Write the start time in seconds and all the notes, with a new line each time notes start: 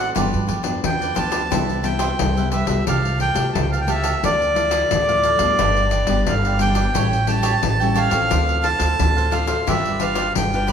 Already playing: A2 A4 C5 D5 F#5
0.15 G1 G2 F3 B3 D4 F4 G4 B4 D5, pandeiro
0.34 G2, pandeiro
0.47 F2 F4 G4 B4 D5, pandeiro
0.63 F3 B3 D4 G4 B4 D5, pandeiro
0.83 E2 D3 G5, pandeiro
1.01 G4 B4 D5, pandeiro
1.15 D2 F3 B3 D4 F4 G4 B4 D5 A5, pandeiro
1.31 F4 G4 B4 D5, pandeiro
1.50 C2 C3 G3 B3 E4 G4 B4 C5 E5, pandeiro
1.69 pandeiro
1.83 G3 B3 E4 G4 B4 C5 E5 G5, pandeiro
1.99 G4 B4 C5 E5, pandeiro
2.19 C2 G2, pandeiro
2.37 G3 B3 E4 B4 C5 E5, pandeiro
2.51 G4 B4 C5 E5, pandeiro
2.67 C2 A3 F4 G4 B4 C5 E5, pandeiro
2.87 C2 C3 G4 A4 F5 A5, pandeiro
3.05 pandeiro
3.19 G4 A4 F5 G5 A5, pandeiro
3.34 C2 A3 F4 G4 F5 A5, pandeiro
3.53 C#2 C3 A5, pandeiro
3.62 G5
3.72 G4 F5 A5, pandeiro
3.81 G5
3.87 A3 F4 G4 A4 E5 F5 A5, pandeiro
4.03 G4 A4 F5 A5, pandeiro
4.22 D2 D3 F3 A3 E4 A4 D5 F5, pandeiro
4.42 pandeiro
4.55 F3 A3 E4 A4 D5 F5, pandeiro
4.71 E4 A4 D5 F5, pandeiro
4.90 D2 A2, pandeiro
5.09 F3 A3 E4 A4 D5 F5, pandeiro
5.23 E4 A4 D5 F5, pandeiro
5.39 D2 G3 B3 D4 A4 D5 F5, pandeiro
5.58 G1 G2 D4 G4 B4 D5, pandeiro
5.77 pandeiro
5.91 D4 G4 B4 D5, pandeiro
6.06 G1 G3 B3 D4 G4 B4 D5, pandeiro
6.27 G1 D3 F5, pandeiro
6.45 G4 B4 D5, pandeiro
6.59 G3 B3 D4 G4 B4 D5 G5, pandeiro
6.75 D4 G4 B4 D5, pandeiro
6.94 A1 A2 G3 C#4 E4 G4 A4 C#5 G5, pandeiro
7.13 pandeiro
7.27 G3 C#4 E4 G4 A4 C#5 G5 A5, pandeiro
7.42 G4 A4 C#5 G5, pandeiro
7.63 A1 E3, pandeiro
7.80 G3 C#4 E4 A4 C#5 G5, pandeiro
7.95 G4 A4 C#5 F5 G5, pandeiro
8.10 A1 C4 F4 A4 C#5 G5, pandeiro
8.30 D2 D3 D4 A4 C5 F5, pandeiro
8.49 pandeiro
8.63 D4 A4 C5 F5 A5, pandeiro
8.78 D2 C4 F4 A4 C5 F5, pandeiro
8.99 D2 A2, pandeiro
9.17 A4 C5 F5, pandeiro
9.31 C4 D4 F4 A4 C5 F5, pandeiro
9.47 D4 A4 C5 F5, pandeiro
9.67 G1 G3 D4 F4 G4 B4 D5 E5, pandeiro
9.85 pandeiro
9.99 D4 F4 G4 B4 D5 F5, pandeiro
10.15 F4 G4 B4 D5, pandeiro
10.35 G1 D3 G5, pandeiro
10.53 D4 F4 G4 B4 D5, pandeiro
10.67 F4 G4 B4, pandeiro